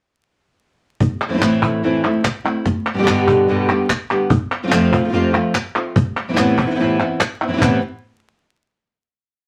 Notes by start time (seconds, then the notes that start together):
1.00 muted nylon-string guitar stroke, cajon bass
1.28 E3 A3 C4 E4
1.32 E3 A3 C4 E4
1.37 E3 A3 C4 E4
1.41 A2 E3 A3 C4 E4, cajon slap, clap
1.62 A3 C4 E4, cajon bass
1.83 A2 E3 A3 C4 E4
2.04 A3 C4 E4
2.24 muted nylon-string guitar stroke, cajon bass, cajon slap, clap
2.44 A3 C4 E4, cajon slap
2.65 muted nylon-string guitar stroke, cajon bass, cajon slap
2.94 B2 D3 G3 B3 G4
2.98 B2 D3 G3 B3 G4
3.03 B2 D3 G3 B3 G4
3.07 G2 B2 D3 G3 B3 G4, cajon slap, clap
3.27 D3 G3 B3 G4, cajon bass
3.47 G2 B2 D3 G3 B3 G4
3.69 D3 G3 B3 G4
3.89 muted nylon-string guitar stroke, cajon bass, cajon slap, clap
4.11 D3 G3 B3 G4
4.30 muted nylon-string guitar stroke, cajon bass
4.63 C3 F3 A3 C4 F4
4.67 C3 F3 A3 C4 F4
4.72 F2 C3 F3 A3 C4 F4, cajon slap, clap
4.92 F3 A3 C4 F4, cajon bass
5.04 C3 F3 A3 C4 F4
5.09 C3 F3 A3 C4 F4
5.13 F2 C3 F3 A3 C4 F4
5.33 F3 A3 C4 F4
5.54 muted nylon-string guitar stroke, cajon slap, clap
5.75 F3 A3 C4 F4, cajon slap
5.96 muted nylon-string guitar stroke, cajon bass
6.29 C3 E3 B3 C4 E4
6.33 C3 E3 B3 C4 E4, cajon slap
6.37 A2 C3 E3 B3 C4 E4, clap
6.58 E3 B3 C4 E4, cajon bass
6.66 C3 E3 B3 C4 E4
6.70 C3 E3 B3 C4 E4
6.75 C3 E3 B3 C4 E4
6.79 A2 C3 E3 B3 C4 E4
7.00 E3 B3 C4 E4
7.20 muted nylon-string guitar stroke, cajon slap, clap
7.41 E3 B3 C4 E4
7.48 C3 E3 B3 C4 E4
7.53 C3 E3 B3 C4 E4
7.58 C3 E3 B3 C4 E4, cajon bass
7.62 A2 C3 E3 B3 C4 E4, clap